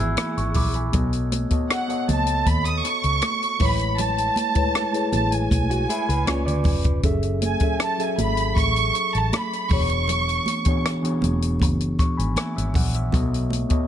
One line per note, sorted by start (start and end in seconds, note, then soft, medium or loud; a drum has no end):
0.00 0.16 G#1 medium
0.00 0.95 E3 medium
0.00 0.92 B3 medium
0.00 0.90 E4 soft
0.00 0.93 F#4 medium
0.00 0.90 G#4 medium
0.00 0.95 G#4 medium
0.00 0.95 C#5 medium
0.00 0.22 D5 medium
0.00 0.96 E5 medium
0.00 0.91 E6 medium
0.17 0.36 G#5 soft
0.17 0.36 B5 medium
0.17 cross-stick medium
0.17 closed hi-hat medium
0.17 high conga medium
0.37 0.56 G#1 medium
0.37 0.55 C#6 medium
0.37 closed hi-hat soft
0.54 0.89 A#1 medium
0.54 0.74 B5 medium
0.54 0.74 D6 medium
0.54 kick medium
0.54 open hi-hat medium
0.54 low conga medium
0.74 1.12 G#5 soft
0.74 1.11 B5 medium
0.74 closed hi-hat soft
0.92 1.45 B1 loud
0.92 1.44 B3 medium
0.92 1.45 F#4 medium
0.92 1.45 A4 medium
0.92 1.46 C#5 medium
0.92 1.46 D#5 medium
0.92 kick medium
0.92 closed hi-hat medium
0.92 low conga medium
1.13 closed hi-hat soft
1.32 closed hi-hat medium
1.32 muted conga soft
1.32 high conga medium
1.50 1.85 B3 medium
1.50 1.85 F#4 medium
1.50 1.85 A4 medium
1.50 1.86 C#5 medium
1.50 1.86 D#5 medium
1.50 kick medium
1.50 closed hi-hat soft
1.70 2.07 F#5 medium
1.70 cross-stick loud
1.70 closed hi-hat medium
1.88 3.25 B3 medium
1.88 3.26 F#4 medium
1.88 3.26 A4 medium
1.88 3.26 C#5 medium
1.88 3.27 D#5 medium
1.88 closed hi-hat soft
2.09 2.42 C#2 medium
2.09 2.48 A5 medium
2.09 closed hi-hat medium
2.09 muted conga soft
2.09 high conga medium
2.09 low conga medium
2.27 closed hi-hat medium
2.46 2.81 D#2 medium
2.46 2.66 B5 medium
2.46 kick medium
2.46 closed hi-hat medium
2.46 muted conga soft
2.46 high conga medium
2.65 2.85 D#6 medium
2.65 closed hi-hat soft
2.85 3.62 C#6 loud
2.85 cross-stick soft
2.85 closed hi-hat medium
2.85 muted conga soft
3.04 3.21 C#2 medium
3.04 closed hi-hat soft
3.22 cross-stick medium
3.22 closed hi-hat medium
3.22 high conga medium
3.43 closed hi-hat soft
3.58 4.29 A1 medium
3.58 4.46 G#3 medium
3.58 4.45 A3 medium
3.58 4.46 E4 medium
3.58 4.46 B4 medium
3.58 4.47 C#5 medium
3.58 kick loud
3.58 open hi-hat medium
3.58 muted conga soft
3.58 low conga medium
3.64 4.01 B5 medium
3.79 closed hi-hat soft
3.98 5.10 A5 medium
3.98 closed hi-hat medium
3.98 muted conga soft
3.98 low conga medium
4.18 closed hi-hat soft
4.36 closed hi-hat medium
4.36 muted conga soft
4.36 high conga medium
4.55 4.90 G#3 medium
4.55 4.90 A3 medium
4.55 4.90 E4 medium
4.55 4.90 B4 medium
4.55 4.91 C#5 medium
4.55 kick medium
4.55 closed hi-hat soft
4.75 cross-stick loud
4.75 closed hi-hat medium
4.75 muted conga soft
4.75 high conga soft
4.93 6.27 A3 medium
4.93 6.27 E4 medium
4.93 6.28 G#4 medium
4.93 6.27 B4 medium
4.93 6.28 C#5 medium
4.93 closed hi-hat soft
5.13 5.47 A1 medium
5.13 5.32 A5 medium
5.13 closed hi-hat medium
5.13 muted conga soft
5.13 high conga medium
5.13 low conga medium
5.32 6.66 G#5 medium
5.32 closed hi-hat medium
5.51 5.85 B1 medium
5.51 kick medium
5.51 closed hi-hat medium
5.51 high conga medium
5.70 5.89 F#4 medium
5.70 closed hi-hat soft
5.89 6.08 E4 medium
5.89 6.08 G#4 medium
5.89 closed hi-hat medium
5.89 muted conga soft
6.09 6.26 C#2 medium
6.09 6.27 G#4 medium
6.09 6.26 B4 medium
6.09 closed hi-hat soft
6.26 6.45 C#2 medium
6.26 6.95 C#3 medium
6.26 6.96 C#4 medium
6.26 6.96 F4 medium
6.26 6.96 B4 medium
6.26 6.45 C#5 medium
6.26 6.97 D5 medium
6.26 cross-stick medium
6.26 closed hi-hat medium
6.26 muted conga soft
6.26 high conga medium
6.46 6.67 D2 medium
6.46 7.01 B4 medium
6.46 7.01 D5 medium
6.46 closed hi-hat soft
6.64 6.99 F1 medium
6.64 kick medium
6.64 open hi-hat medium
6.64 muted conga soft
6.64 low conga medium
6.84 kick medium
6.84 closed hi-hat soft
7.03 7.55 F#1 medium
7.03 7.55 F#3 medium
7.03 7.55 C#4 medium
7.03 7.55 G#4 medium
7.03 7.56 A4 medium
7.03 7.56 E5 medium
7.03 kick medium
7.03 closed hi-hat medium
7.03 muted conga soft
7.03 low conga medium
7.23 closed hi-hat soft
7.42 7.79 G#5 medium
7.42 closed hi-hat medium
7.42 muted conga soft
7.42 high conga medium
7.60 7.95 F#3 medium
7.60 7.95 C#4 medium
7.60 7.96 G#4 medium
7.60 7.96 A4 medium
7.60 7.97 E5 medium
7.60 kick medium
7.60 closed hi-hat soft
7.80 8.01 A5 medium
7.80 cross-stick loud
7.80 closed hi-hat medium
7.98 9.35 F#3 medium
7.98 9.36 C#4 medium
7.98 9.36 G#4 medium
7.98 9.36 A4 medium
7.98 9.37 E5 medium
7.98 closed hi-hat soft
8.02 8.20 G#5 medium
8.18 8.53 G#1 medium
8.18 8.55 B5 medium
8.18 closed hi-hat medium
8.18 muted conga soft
8.18 high conga medium
8.18 low conga medium
8.37 closed hi-hat soft
8.56 8.90 A1 medium
8.56 9.15 C#6 loud
8.56 kick medium
8.56 closed hi-hat medium
8.56 high conga medium
8.76 closed hi-hat soft
8.95 closed hi-hat medium
9.15 9.31 A1 medium
9.15 9.34 A5 medium
9.15 closed hi-hat soft
9.33 9.72 B5 medium
9.33 cross-stick loud
9.33 closed hi-hat medium
9.33 high conga medium
9.53 closed hi-hat soft
9.69 10.38 E1 medium
9.69 10.56 E3 medium
9.69 10.56 B3 medium
9.69 10.56 D4 medium
9.69 10.57 F#4 medium
9.69 10.57 G#4 medium
9.69 10.57 C#5 medium
9.69 10.86 C#6 medium
9.69 kick loud
9.69 open hi-hat medium
9.69 low conga medium
9.90 closed hi-hat medium
10.08 closed hi-hat medium
10.08 muted conga soft
10.08 low conga medium
10.29 closed hi-hat soft
10.46 closed hi-hat medium
10.46 muted conga soft
10.46 high conga medium
10.65 11.00 E3 medium
10.65 11.00 B3 medium
10.65 11.00 D4 medium
10.65 11.01 F#4 medium
10.65 11.01 G#4 medium
10.65 11.01 C#5 medium
10.65 kick medium
10.65 closed hi-hat soft
10.86 cross-stick loud
10.86 closed hi-hat medium
11.02 12.40 E3 medium
11.02 12.40 B3 medium
11.02 12.41 D4 medium
11.02 12.41 F#4 medium
11.02 12.41 G#4 medium
11.02 12.00 C#5 medium
11.02 closed hi-hat soft
11.22 11.62 E1 medium
11.22 closed hi-hat medium
11.22 high conga medium
11.22 low conga medium
11.42 closed hi-hat medium
11.59 11.95 F#1 medium
11.59 kick medium
11.59 closed hi-hat medium
11.59 high conga medium
11.80 closed hi-hat soft
11.99 12.17 C#6 medium
11.99 kick medium
11.99 cross-stick soft
11.99 closed hi-hat medium
11.99 muted conga soft
12.17 12.36 G#1 medium
12.17 12.35 G#5 medium
12.17 12.36 B5 medium
12.17 closed hi-hat soft
12.36 12.55 E5 medium
12.36 12.55 G#5 medium
12.36 cross-stick medium
12.36 closed hi-hat medium
12.36 high conga medium
12.56 12.74 G#1 medium
12.56 12.75 C#5 medium
12.56 12.75 E5 medium
12.56 closed hi-hat soft
12.74 13.09 A#1 medium
12.74 12.94 D5 soft
12.74 12.94 F#5 medium
12.74 kick medium
12.74 open hi-hat medium
12.74 low conga medium
12.94 13.13 C#5 soft
12.94 13.31 E5 medium
12.94 closed hi-hat soft
13.12 13.64 B1 loud
13.12 13.64 B3 medium
13.12 13.64 F#4 medium
13.12 13.65 A4 medium
13.12 13.65 C#5 medium
13.12 13.65 D#5 medium
13.12 kick medium
13.12 closed hi-hat medium
13.12 low conga medium
13.34 closed hi-hat soft
13.50 closed hi-hat medium
13.50 muted conga soft
13.50 high conga medium
13.69 13.87 B3 medium
13.69 13.87 F#4 medium
13.69 13.87 A4 medium
13.69 13.87 C#5 medium
13.69 13.87 D#5 medium
13.69 kick medium
13.69 closed hi-hat soft